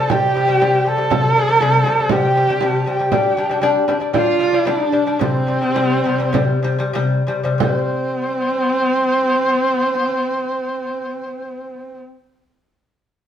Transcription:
0.00 0.11 A4 loud
0.00 0.11 A5 loud
0.10 0.30 C3 medium
0.10 0.31 G3 loud
0.10 0.89 G4 loud
0.10 0.88 G5 medium
0.10 frame drum medium
0.35 0.46 C3 medium
0.35 0.46 G3 medium
0.47 0.58 C3 medium
0.47 0.59 G3 medium
0.60 0.81 C3 medium
0.60 0.82 G3 loud
0.60 frame drum medium
0.85 0.95 C3 medium
0.85 0.96 G3 medium
0.85 2.13 A4 loud
0.85 2.14 A5 loud
0.85 frame drum soft
0.97 1.08 C3 medium
0.97 1.09 G3 medium
1.10 1.31 C3 medium
1.10 1.32 G3 medium
1.10 frame drum medium
1.36 1.47 C3 medium
1.36 1.47 G3 medium
1.36 frame drum soft
1.48 1.58 C3 medium
1.48 1.59 G3 medium
1.60 1.81 C3 loud
1.60 1.82 G3 loud
1.60 frame drum medium
1.84 1.96 C3 medium
1.84 1.97 G3 medium
1.84 frame drum soft
1.99 2.09 C3 medium
1.99 2.10 G3 medium
2.09 2.32 C3 medium
2.09 2.32 G3 medium
2.09 2.87 G4 loud
2.09 2.66 G5 medium
2.09 frame drum medium
2.35 2.46 C3 medium
2.35 2.47 G3 medium
2.35 frame drum soft
2.49 2.59 C3 medium
2.49 2.60 G3 medium
2.61 2.81 C3 medium
2.61 2.82 G3 loud
2.61 frame drum medium
2.65 2.92 A5 medium
2.86 2.97 C3 medium
2.86 2.97 G3 medium
2.86 3.85 G4 medium
2.86 3.90 G5 medium
2.86 frame drum soft
2.99 3.09 C3 medium
2.99 3.10 G3 medium
3.12 3.32 G3 medium
3.12 3.33 D4 medium
3.12 frame drum medium
3.37 3.47 G3 medium
3.37 3.48 D4 medium
3.37 frame drum soft
3.49 3.60 G3 medium
3.49 3.61 D4 loud
3.61 3.83 G3 loud
3.61 3.83 D4 loud
3.61 frame drum medium
3.88 3.98 G3 medium
3.88 3.99 D4 medium
3.88 frame drum medium
4.00 4.11 G3 medium
4.00 4.11 D4 medium
4.13 4.34 G3 medium
4.13 4.35 D4 medium
4.13 4.70 F4 loud
4.13 4.39 F5 loud
4.13 frame drum medium
4.39 4.50 G3 medium
4.39 4.51 D4 medium
4.39 4.69 F5 medium
4.39 frame drum soft
4.53 4.63 G3 medium
4.53 4.64 D4 medium
4.65 4.87 G3 medium
4.65 4.88 D4 loud
4.65 5.22 D4 medium
4.65 5.21 D5 medium
4.65 frame drum medium
4.92 5.03 G3 medium
4.92 5.04 D4 medium
4.92 frame drum soft
5.06 5.17 G3 medium
5.06 5.18 D4 medium
5.19 5.42 C3 medium
5.19 5.42 G3 medium
5.19 6.95 C4 loud
5.19 6.95 C5 medium
5.19 frame drum medium
5.47 5.59 C3 medium
5.47 5.59 G3 medium
5.47 frame drum soft
5.61 5.73 C3 medium
5.61 5.73 G3 medium
5.74 5.98 C3 medium
5.74 5.99 G3 loud
5.74 frame drum medium
6.04 6.16 C3 medium
6.04 6.17 G3 loud
6.18 6.31 C3 medium
6.18 6.31 G3 medium
6.33 6.58 C3 loud
6.33 6.58 G3 loud
6.33 frame drum medium
6.63 6.76 C3 medium
6.63 6.77 G3 loud
6.63 frame drum soft
6.78 6.92 C3 medium
6.78 6.92 G3 loud
6.93 7.20 C3 loud
6.93 7.21 G3 loud
6.93 frame drum medium
7.27 7.40 C3 medium
7.27 7.41 G3 medium
7.27 frame drum soft
7.43 7.57 C3 medium
7.43 7.58 G3 medium
7.58 11.96 C3 medium
7.58 11.98 C4 loud
7.58 11.99 C5 loud
7.58 frame drum medium
7.63 12.01 G3 medium

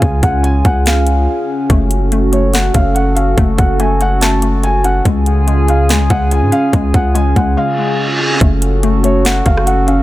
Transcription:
0.00 0.22 C#2 loud
0.00 1.66 C#3 medium
0.00 5.01 C#4 medium
0.00 1.66 F4 medium
0.00 1.66 G#4 medium
0.00 1.66 G#5 medium
0.00 kick loud
0.00 closed hi-hat medium
0.23 0.63 C#2 loud
0.23 0.43 F#5 medium
0.23 kick loud
0.23 closed hi-hat medium
0.44 0.64 G#5 medium
0.44 closed hi-hat medium
0.65 1.28 C#2 loud
0.65 0.85 F#5 medium
0.65 kick medium
0.65 closed hi-hat medium
0.86 1.66 F5 medium
0.86 snare loud
0.86 closed hi-hat medium
1.07 closed hi-hat medium
1.70 2.71 F#1 loud
1.70 2.11 A3 medium
1.70 5.02 F#4 medium
1.70 5.02 A4 medium
1.70 kick loud
1.70 closed hi-hat medium
1.91 closed hi-hat medium
2.12 2.31 A3 medium
2.12 closed hi-hat medium
2.32 2.52 A3 medium
2.32 2.53 C#5 medium
2.32 closed hi-hat medium
2.54 2.73 A3 medium
2.54 2.74 F#5 medium
2.54 snare loud
2.54 closed hi-hat medium
2.74 3.35 F#1 loud
2.74 3.36 A3 medium
2.74 2.94 F5 medium
2.74 kick medium
2.74 closed hi-hat medium
2.95 3.15 F#5 medium
2.95 closed hi-hat medium
3.15 4.43 C#4 medium
3.15 3.36 F5 medium
3.15 closed hi-hat medium
3.38 3.58 F#1 loud
3.38 3.79 A3 loud
3.38 kick loud
3.38 closed hi-hat medium
3.58 5.01 F#1 loud
3.58 3.78 F#5 medium
3.58 kick loud
3.58 closed hi-hat medium
3.80 3.99 A3 medium
3.80 4.00 G#5 medium
3.80 closed hi-hat medium
4.01 4.20 A3 medium
4.01 4.21 F#5 medium
4.01 closed hi-hat medium
4.21 4.41 A3 loud
4.21 4.61 A5 medium
4.21 snare loud
4.21 closed hi-hat medium
4.42 5.05 A3 medium
4.42 closed hi-hat medium
4.63 4.83 G#5 medium
4.63 closed hi-hat medium
4.84 5.05 C#4 medium
4.84 5.04 F#5 medium
4.84 closed hi-hat medium
5.05 5.91 C#2 loud
5.05 8.38 C#3 medium
5.05 5.46 G#3 medium
5.05 8.38 C#4 medium
5.05 8.38 F4 medium
5.05 8.38 G#4 medium
5.05 8.38 G#5 medium
5.05 kick loud
5.05 closed hi-hat medium
5.26 closed hi-hat medium
5.47 5.67 G#3 medium
5.47 closed hi-hat medium
5.68 5.88 G#3 medium
5.68 5.89 F5 medium
5.68 closed hi-hat medium
5.89 6.01 D2 loud
5.89 6.09 G#3 medium
5.89 6.10 G#5 medium
5.89 snare loud
5.89 closed hi-hat medium
6.00 6.10 C#2 loud
6.10 6.43 C#2 loud
6.10 6.72 G#3 medium
6.10 6.30 F#5 medium
6.10 kick medium
6.10 closed hi-hat medium
6.31 6.51 G#5 medium
6.31 closed hi-hat medium
6.42 6.52 G#2 medium
6.52 7.78 C#4 medium
6.52 6.72 F5 medium
6.52 closed hi-hat medium
6.73 6.93 C#2 loud
6.73 7.14 G#3 medium
6.73 kick loud
6.73 closed hi-hat medium
6.94 7.35 C#2 loud
6.94 7.14 F#5 medium
6.94 kick loud
6.94 closed hi-hat medium
7.15 7.35 G#3 medium
7.15 7.35 G#5 medium
7.15 closed hi-hat medium
7.36 7.56 C#2 loud
7.36 7.56 G#3 medium
7.36 7.56 F#5 medium
7.36 kick medium
7.36 closed hi-hat medium
7.57 7.77 G#3 medium
7.57 8.37 F5 medium
7.57 reverse cymbal medium
7.78 8.41 G#3 medium
8.20 8.41 C#4 medium
8.41 9.42 F#1 loud
8.41 8.82 A3 medium
8.41 10.03 C#4 medium
8.41 10.03 F#4 medium
8.41 10.03 A4 medium
8.41 kick loud
8.41 closed hi-hat medium
8.62 closed hi-hat medium
8.83 9.02 A3 medium
8.83 closed hi-hat medium
9.04 9.24 A3 medium
9.04 9.24 C#5 medium
9.04 closed hi-hat medium
9.25 9.44 A3 medium
9.25 9.45 F#5 medium
9.25 snare loud
9.25 closed hi-hat medium
9.45 10.03 F#1 loud
9.45 10.03 A3 medium
9.45 9.66 F5 medium
9.45 kick loud
9.45 closed hi-hat medium
9.57 cross-stick loud
9.66 9.87 F#5 medium
9.66 closed hi-hat medium
9.87 10.03 C#4 medium
9.87 10.03 F5 medium
9.87 closed hi-hat medium

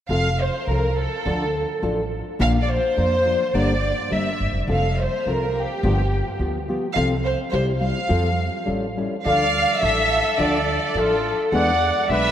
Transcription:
0.09 0.47 F1 medium
0.09 0.27 F3 medium
0.09 0.27 C4 medium
0.09 0.28 F4 medium
0.09 0.28 A4 medium
0.09 0.38 F5 medium
0.40 0.68 C5 medium
0.67 1.05 C2 medium
0.67 0.86 F3 soft
0.67 0.86 C4 soft
0.67 0.87 F4 medium
0.67 0.87 A4 medium
0.67 0.98 A#4 medium
0.98 1.79 A4 medium
1.25 1.63 D2 medium
1.25 1.43 D3 medium
1.25 1.43 F3 medium
1.25 1.43 D4 medium
1.25 1.43 F4 medium
1.25 1.44 A4 medium
1.82 2.20 A1 medium
1.82 2.00 F3 medium
1.82 2.00 D4 medium
1.82 2.00 F4 medium
1.82 2.00 A4 medium
2.39 2.77 A#1 loud
2.39 2.57 A#2 medium
2.39 2.57 D3 medium
2.39 2.57 F3 medium
2.39 2.57 A#3 medium
2.39 2.57 D4 medium
2.39 2.57 A#4 medium
2.39 2.51 F5 loud
2.62 2.69 D5 medium
2.71 3.55 C5 loud
2.97 3.34 F2 medium
2.97 3.14 F3 soft
2.97 3.14 A#3 medium
2.97 3.14 D4 medium
2.97 3.15 A#4 medium
3.25 3.42 F3 medium
3.25 3.42 A#3 medium
3.25 3.43 D4 soft
3.25 3.43 A#4 soft
3.54 3.91 G1 medium
3.54 3.72 G2 medium
3.54 3.72 D3 medium
3.54 3.72 G3 medium
3.54 3.72 A#3 medium
3.54 3.72 D4 medium
3.54 3.72 A#4 medium
3.54 4.13 D5 medium
4.10 4.30 G1 medium
4.10 4.28 G3 soft
4.10 4.29 A#3 soft
4.10 4.29 D4 medium
4.10 4.29 A#4 medium
4.10 4.56 E5 medium
4.40 4.52 G1 medium
4.53 4.66 F1 medium
4.68 5.06 F1 medium
4.68 4.86 F3 medium
4.68 4.87 C4 medium
4.68 4.86 F4 medium
4.68 4.87 A4 medium
4.72 4.98 F5 medium
5.01 5.28 C5 medium
5.26 5.63 C2 medium
5.26 5.44 F3 soft
5.26 5.45 C4 medium
5.26 5.45 F4 medium
5.26 5.46 A4 medium
5.26 5.57 A#4 medium
5.58 6.41 G4 medium
5.83 6.20 G1 loud
5.83 6.01 G2 medium
5.83 6.01 D3 medium
5.83 6.01 F3 medium
5.83 6.01 B3 medium
5.83 6.01 F4 medium
5.83 6.01 G4 medium
6.39 6.76 D2 medium
6.39 6.57 F3 medium
6.39 6.58 B3 medium
6.39 6.58 F4 medium
6.39 6.58 G4 medium
6.68 6.85 F3 medium
6.68 6.86 B3 medium
6.68 6.86 F4 medium
6.68 6.86 G4 medium
6.95 7.33 C2 medium
6.95 7.13 C3 medium
6.95 7.13 F3 medium
6.95 7.14 C4 medium
6.95 7.13 F4 medium
6.95 7.14 A4 medium
6.95 7.08 F5 medium
7.25 7.37 C5 medium
7.52 7.90 C2 medium
7.52 7.70 G3 medium
7.52 7.71 C4 medium
7.52 7.71 E4 medium
7.52 7.71 G4 medium
7.52 7.65 C5 medium
7.80 7.98 G3 soft
7.80 7.98 C4 soft
7.80 7.99 E4 soft
7.80 7.99 G4 soft
7.80 8.63 F5 medium
8.09 8.47 F2 medium
8.09 8.27 F3 medium
8.09 8.27 C4 medium
8.09 8.27 F4 medium
8.09 8.28 A4 medium
8.65 9.05 A1 medium
8.65 8.85 G3 medium
8.65 8.85 C#4 medium
8.65 8.85 E4 medium
8.65 8.85 A4 medium
8.97 9.14 G3 soft
8.97 9.14 C#4 soft
8.97 9.15 E4 medium
8.97 9.15 A4 soft
9.25 9.63 D2 medium
9.25 9.43 D3 medium
9.25 9.43 F3 medium
9.25 9.43 D4 medium
9.25 9.44 F4 medium
9.25 9.44 A4 medium
9.25 9.86 D5 medium
9.25 9.79 F5 loud
9.81 10.20 A1 medium
9.81 10.00 F3 medium
9.81 10.00 D4 medium
9.81 10.00 F4 soft
9.81 10.00 A4 medium
9.81 10.41 A4 medium
9.81 10.40 E5 loud
10.38 10.76 D2 medium
10.38 10.56 D3 medium
10.38 10.57 F3 medium
10.38 10.57 D4 medium
10.38 10.57 F4 medium
10.38 10.57 A4 medium
10.38 11.01 A4 medium
10.38 10.97 D5 medium
10.95 11.32 A1 medium
10.95 11.14 F3 medium
10.95 11.13 D4 medium
10.95 11.14 F4 medium
10.95 11.14 A4 medium
10.95 11.39 A4 medium
10.99 11.40 F4 medium
11.52 11.89 E2 medium
11.52 11.70 E3 medium
11.52 11.70 G#3 medium
11.52 11.70 B3 medium
11.52 11.70 D4 medium
11.52 11.70 G#4 medium
11.52 12.06 F#5 medium
11.56 12.07 D5 medium
12.09 12.32 B1 medium
12.09 12.26 G#3 medium
12.09 12.27 B3 medium
12.09 12.27 D4 medium
12.09 12.27 G#4 medium
12.09 12.32 B4 loud
12.09 12.32 E5 loud

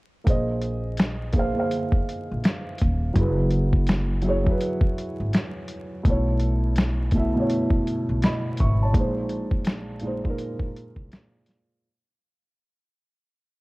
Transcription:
0.24 1.54 A#1 medium
0.24 0.92 A#3 medium
0.24 0.93 G#4 medium
0.24 kick loud
0.24 closed hi-hat medium
0.28 0.94 C5 medium
0.28 0.95 D#5 medium
0.62 closed hi-hat medium
0.97 finger snap medium
0.97 snare loud
0.97 closed hi-hat medium
1.33 1.47 A#3 medium
1.33 1.48 G#4 medium
1.33 kick medium
1.33 closed hi-hat medium
1.37 1.49 C5 medium
1.37 1.51 F5 medium
1.53 2.39 A#3 medium
1.53 2.40 G#4 medium
1.58 2.41 C5 medium
1.58 2.42 F5 medium
1.71 closed hi-hat medium
1.92 kick medium
2.09 closed hi-hat medium
2.31 2.44 A#1 medium
2.44 finger snap medium
2.44 snare loud
2.44 closed hi-hat medium
2.78 3.14 D#1 medium
2.78 kick medium
2.78 closed hi-hat medium
3.14 4.43 F#1 loud
3.14 3.82 F#3 medium
3.14 3.83 E4 medium
3.14 3.84 G#4 medium
3.14 kick loud
3.14 closed hi-hat medium
3.20 3.85 B4 medium
3.50 closed hi-hat medium
3.73 kick medium
3.87 finger snap medium
3.87 snare loud
3.87 closed hi-hat medium
4.22 4.36 F#3 medium
4.22 4.38 E4 medium
4.22 closed hi-hat medium
4.26 4.39 G#4 medium
4.26 4.40 C#5 medium
4.44 5.29 F#3 medium
4.44 5.30 E4 medium
4.44 5.31 G#4 medium
4.44 kick medium
4.51 5.33 B4 medium
4.61 closed hi-hat medium
4.81 kick loud
4.98 closed hi-hat medium
5.20 5.32 G#1 medium
5.33 finger snap medium
5.33 snare loud
5.33 closed hi-hat medium
5.68 closed hi-hat medium
6.03 7.32 B1 loud
6.03 6.71 B2 medium
6.03 6.72 A3 medium
6.03 kick loud
6.03 closed hi-hat medium
6.07 6.73 E4 medium
6.07 6.74 C#5 medium
6.40 closed hi-hat medium
6.76 finger snap medium
6.76 snare loud
6.76 closed hi-hat medium
7.11 7.26 B2 medium
7.11 7.27 A3 medium
7.11 kick medium
7.11 closed hi-hat medium
7.15 7.28 E4 medium
7.15 7.29 E5 medium
7.34 8.19 B2 medium
7.34 8.20 A3 medium
7.38 8.21 E4 medium
7.38 7.88 C#5 medium
7.50 closed hi-hat medium
7.70 kick medium
7.87 closed hi-hat medium
8.09 8.21 B1 medium
8.22 8.58 D#5 medium
8.22 8.57 B5 medium
8.22 finger snap medium
8.22 snare loud
8.22 closed hi-hat medium
8.57 8.93 G#1 medium
8.57 8.80 E5 medium
8.57 8.80 C#6 medium
8.57 kick medium
8.57 closed hi-hat medium
8.82 9.16 C#5 medium
8.82 9.16 A5 medium
8.92 10.21 A#1 medium
8.92 9.60 A#2 medium
8.92 9.61 G#3 medium
8.92 kick loud
8.92 closed hi-hat medium
8.97 9.62 D#4 medium
8.97 9.64 C5 medium
9.29 closed hi-hat medium
9.51 kick medium
9.65 finger snap medium
9.65 snare loud
9.65 closed hi-hat medium
10.00 10.15 A#2 medium
10.00 10.16 G#3 medium
10.00 closed hi-hat medium
10.05 10.17 D#4 medium
10.05 10.18 C5 medium
10.23 11.08 A#2 medium
10.23 11.09 G#3 medium
10.23 11.10 D#4 medium
10.23 kick medium
10.30 11.11 A#4 medium
10.38 closed hi-hat medium
10.59 kick medium
10.76 closed hi-hat medium
10.96 11.10 C2 medium
10.96 kick medium
11.12 finger snap medium
11.12 snare loud
11.12 closed hi-hat medium
11.46 snare soft
11.46 closed hi-hat medium

